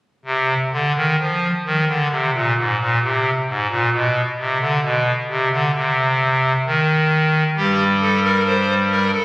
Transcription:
0.25 C3
0.72 D3
0.97 D#3
1.19 F3
1.66 D#3
1.88 D3
2.11 C3
2.34 A#2
2.57 G#2
2.80 A#2
3.03 C3
3.48 G#2
3.70 A#2
3.93 B2
4.39 C3
4.60 D3
4.83 B2
5.29 C3
5.51 D3
5.75 C3
6.66 D#3
7.56 G2 G3 G4
8.01 A4
8.24 A#4
8.46 C5
8.90 A#4
9.12 A4

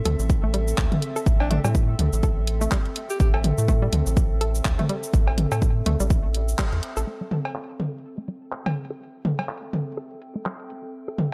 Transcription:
Already playing: C4 A4 E5
0.05 D2 A4, closed hi-hat, high tom
0.19 A1, cabasa
0.30 kick, cabasa
0.43 A3
0.54 G3, closed hi-hat
0.68 cabasa
0.78 D2, kick, clap, cabasa
0.92 closed hi-hat, high tom
1.02 closed hi-hat
1.16 A4, cabasa
1.26 A1, kick, cabasa
1.40 D4, cowbell
1.51 A3 D4, closed hi-hat, high tom
1.64 A2 G3, cowbell, cabasa
1.75 kick, cabasa
1.99 D2, closed hi-hat, high tom
2.13 A1, cabasa
2.23 A4, kick, cabasa
2.47 closed hi-hat
2.61 A3, cabasa
2.72 G3, kick, clap, cabasa
2.86 closed hi-hat
2.96 closed hi-hat
3.10 G4, cabasa
3.20 A1 G4, kick, cabasa
3.34 A4, cowbell
3.44 closed hi-hat, high tom
3.58 A2, cabasa
3.68 A3, kick, cabasa
3.82 G3
3.93 D2, closed hi-hat, high tom
4.07 A1, cabasa
4.17 kick, cabasa
4.41 A4, closed hi-hat
4.55 cabasa
4.65 D2, kick, clap, cabasa
4.79 A3, closed hi-hat, high tom
4.89 G3, closed hi-hat
5.03 cabasa
5.14 A1, kick, cabasa
5.27 cowbell
5.38 closed hi-hat, high tom
5.52 A2 A4, cowbell, cabasa
5.62 kick, cabasa
5.86 D2 A3, closed hi-hat, high tom
6.00 A1 G3, cabasa
6.10 kick, cabasa
6.35 closed hi-hat
6.48 cabasa
6.59 G3, kick, clap, cabasa
6.73 E2, closed hi-hat
6.83 closed hi-hat
6.97 A1 A4, cabasa
7.07 A3
7.21 G3
7.31 closed hi-hat, high tom
7.45 cowbell
7.56 G5, clap
7.80 A4, closed hi-hat, high tom
8.18 A3
8.28 G3, closed hi-hat
8.52 clap
8.66 high tom, cowbell
8.76 closed hi-hat
8.90 A4
9.25 A3, closed hi-hat, high tom
9.39 G3, cowbell
9.49 clap
9.73 closed hi-hat, high tom
9.97 A4
10.22 closed hi-hat
10.36 A3
10.46 G3, clap
10.60 closed hi-hat
10.70 closed hi-hat
11.08 A4
11.18 closed hi-hat, high tom

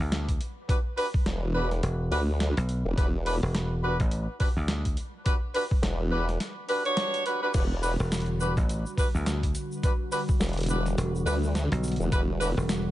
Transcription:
0.00 D2
0.12 snare, closed hi-hat
0.29 kick, closed hi-hat
0.41 closed hi-hat
0.69 D4 F#4 G4 B4, kick, closed hi-hat
0.97 D4 F#4 G4 B4, open hi-hat
1.14 kick
1.26 E1, snare, closed hi-hat
1.55 D4 F#4 G4 B4
1.71 snare, closed hi-hat
1.83 E1, closed hi-hat
2.11 D2 D4 F#4 G4 B4, open hi-hat
2.40 snare, closed hi-hat
2.57 B1, closed hi-hat
2.69 closed hi-hat
2.85 E1
2.97 E1 D4 F#4 G4 B4, kick, closed hi-hat
3.26 D4 F#4 G4 B4, open hi-hat
3.43 E1
3.55 snare, closed hi-hat
3.83 D4 F#4 G4 B4
4.00 A1, kick, closed hi-hat
4.11 closed hi-hat
4.40 D4 F#4 G4 B4, kick, open hi-hat
4.57 D2
4.68 snare, closed hi-hat
4.85 kick, closed hi-hat
4.97 closed hi-hat
5.26 D4 F#4 G4 B4, kick, closed hi-hat
5.54 D4 F#4 G4 B4, open hi-hat
5.71 kick
5.83 E1, snare, closed hi-hat
6.12 D4 F#4 G4 B4
6.29 snare, closed hi-hat
6.40 snare, closed hi-hat
6.69 D4 F#4 G4 B4, open hi-hat
6.85 D4 F#4 G4 C#5, closed hi-hat
6.97 snare, closed hi-hat
7.14 closed hi-hat
7.26 D4 F#4 G4 B4, closed hi-hat
7.42 D4 F#4 G4 B4
7.54 E1 D3 G3 D4 F#4 G4 B4, kick, closed hi-hat, crash, shaker
7.83 D4 F#4 G4 B4, open hi-hat, shaker
7.99 E1, shaker
8.12 snare, closed hi-hat, shaker
8.14 closed hi-hat
8.18 closed hi-hat
8.20 closed hi-hat
8.26 closed hi-hat
8.40 D4 F#4 G4 B4, shaker
8.57 A1, kick, closed hi-hat, shaker
8.69 closed hi-hat, shaker
8.86 shaker
8.98 D4 F#4 G4 B4, kick, open hi-hat, shaker
9.15 D2, shaker
9.26 snare, closed hi-hat, shaker
9.43 kick, closed hi-hat
9.55 closed hi-hat, shaker
9.72 shaker
9.83 D4 F#4 G4 B4, kick, closed hi-hat, shaker
10.12 D4 F#4 G4 B4, open hi-hat, shaker
10.29 kick, shaker
10.40 E1, snare, closed hi-hat, shaker
10.45 closed hi-hat
10.49 closed hi-hat
10.53 closed hi-hat
10.57 closed hi-hat
10.61 closed hi-hat
10.63 closed hi-hat
10.66 D4 F#4 G4 B4, closed hi-hat, shaker
10.86 snare, closed hi-hat, shaker
10.98 E1, closed hi-hat, shaker
11.15 shaker
11.26 D2 D4 F#4 G4 B4, open hi-hat, shaker
11.43 shaker
11.55 snare, closed hi-hat, shaker
11.72 B1, closed hi-hat
11.84 closed hi-hat, shaker
11.88 closed hi-hat
11.92 closed hi-hat
11.96 E1, closed hi-hat
12.01 shaker
12.12 E1 D4 F#4 G4 B4, kick, closed hi-hat, shaker
12.40 D4 F#4 G4 B4, open hi-hat, shaker
12.57 E1, shaker
12.69 snare, closed hi-hat, shaker

